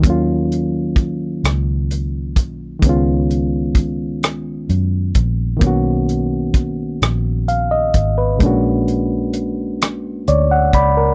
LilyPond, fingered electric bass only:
\new Staff \with { instrumentName = "Fingered electric bass" } { \clef bass \time 6/8 \key b \lydian \tempo 4. = 43 dis,4. cis,4 b,,8 | cis,2 fis,8 ais,,8 | b,,4. ais,,4 gis,,8 | ais,,2 d,8 cis,8 | }